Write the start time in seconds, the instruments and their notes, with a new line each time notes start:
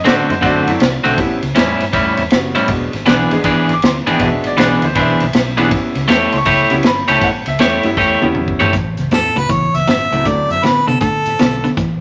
0.04 fingered electric bass A2, clean electric guitar D3 A3 C4 F#4, upright piano D5, snare, ride
0.29 fingered electric bass F#2, upright piano C5, snare, ride
0.41 fingered electric bass F#2, clean electric guitar D3 A3 C4 F#4, upright piano F#4, kick, snare, ride
0.45 upright piano D5
0.67 fingered electric bass F#2, upright piano F#3 A3 C4 E4, snare, ride
0.80 fingered electric bass C2, snare, ride
1.04 fingered electric bass B1, clean electric guitar D3 A3 C4 F#4, snare, ride
1.18 fingered electric bass A1, upright piano G3 B3 C#4 E4, kick, snare, ride
1.42 fingered electric bass C#2, snare, ride
1.55 fingered electric bass E2, clean electric guitar A2 G3 C#4 E4, snare, ride
1.80 fingered electric bass G2, snare, ride
1.93 fingered electric bass E2, clean electric guitar A2 G3 C#4 E4, kick, snare, ride
2.17 fingered electric bass E2, snare, ride
2.30 fingered electric bass F#1, upright piano G3 B3 C#4 F#4, snare, ride
2.55 clean electric guitar A2 G3 C#4 E4, snare, ride
2.68 fingered electric bass E1, upright piano G#3 B3 D4 F#4, kick, snare, ride
2.93 fingered electric bass G#1, snare, ride
3.06 fingered electric bass B1, clean electric guitar E3 B3 D4 G#4, snare, ride
3.31 fingered electric bass G#1, upright piano G#3 B3 D4 G#4, snare, ride
3.44 fingered electric bass G#1, clean electric guitar E3 B3 D4 G#4, kick, snare, ride
3.68 fingered electric bass G#1, snare, ride
3.73 upright piano D6
3.82 fingered electric bass D2, snare, ride
3.86 upright piano C6
4.07 fingered electric bass G#1, clean electric guitar E3 B3 D4 G#4, snare, ride
4.11 upright piano G5
4.19 fingered electric bass E1, upright piano G#3 B3 D4 F#4, kick, snare, ride
4.25 upright piano E5
4.44 fingered electric bass G#1, upright piano D5, snare, ride
4.57 fingered electric bass B1, clean electric guitar E3 B3 D4 G#4, upright piano D5, snare, ride
4.82 fingered electric bass D2, upright piano C5, snare, ride
4.95 fingered electric bass B1, clean electric guitar E3 B3 D4 G#4, kick, snare, ride
4.99 upright piano C5 E5
5.20 fingered electric bass B1, snare, ride
5.33 fingered electric bass B1, snare, ride
5.57 clean electric guitar E3 B3 D4 G#4, upright piano G3 B3 C#4 E4, snare, ride
5.71 fingered electric bass A1, kick, snare, ride
5.95 fingered electric bass C#2, snare, ride
6.08 fingered electric bass E2, clean electric guitar A3 E4 G4 C#5, snare, ride
6.32 fingered electric bass C#2, snare, ride
6.38 upright piano C#6
6.45 fingered electric bass C#2, clean electric guitar A3 E4 G4 C#5, kick, snare, ride
6.70 fingered electric bass C#2, upright piano G3 B3 C#4 E4, snare, ride
6.83 fingered electric bass G1, snare, ride
6.87 upright piano B5
7.08 fingered electric bass C#2, clean electric guitar A3 E4 G4 C#5, upright piano A5, snare, ride
7.21 fingered electric bass A1, upright piano F#5, kick, snare, ride
7.46 fingered electric bass C#2, upright piano E5, snare, ride
7.59 fingered electric bass E2, clean electric guitar A3 E4 G4 C#5, snare, ride
7.83 fingered electric bass G2, upright piano G3 B3 C#4 E4, snare, ride
7.97 fingered electric bass E2, clean electric guitar A3 E4 G4 C#5, kick
8.22 fingered electric bass E2, upright piano G3 B3 C#4 E4, mid tom
8.35 fingered electric bass E2, mid tom
8.48 kick
8.60 clean electric guitar A3 E4 G4 C#5, floor tom
8.73 fingered electric bass A1, clean electric guitar A2 E3, kick, snare, closed hi-hat
8.97 fingered electric bass C#2, snare, closed hi-hat
9.11 fingered electric bass E2, clean electric guitar A2 F#3, harmonica A4, snare, closed hi-hat
9.36 fingered electric bass C#2, clean electric guitar A2 F#3, harmonica B4, snare, closed hi-hat
9.49 clean electric guitar A2 E3, harmonica C#5, kick, snare, closed hi-hat
9.74 fingered electric bass C#2, harmonica E5, snare, closed hi-hat
9.87 fingered electric bass G1, clean electric guitar A2 F#3, snare, closed hi-hat
10.11 fingered electric bass C#2, clean electric guitar A2 F#3, upright piano F#3 A3 C4 E4, snare, closed hi-hat
10.25 fingered electric bass D2, clean electric guitar D3 A3, harmonica D5, kick, snare, closed hi-hat
10.49 fingered electric bass F#2, harmonica E5, snare, closed hi-hat
10.63 fingered electric bass A2, clean electric guitar D3 B3, harmonica B4, snare, closed hi-hat
10.87 fingered electric bass C3, clean electric guitar D3 B3, harmonica A4, snare, closed hi-hat
11.01 fingered electric bass A2, clean electric guitar D3 A3, harmonica A4, kick, snare, closed hi-hat
11.26 fingered electric bass A2, snare, closed hi-hat
11.39 fingered electric bass B1, clean electric guitar D3 B3, snare, closed hi-hat
11.64 clean electric guitar D3 B3, snare, closed hi-hat
11.77 fingered electric bass A1, clean electric guitar A2 E3, kick, snare, closed hi-hat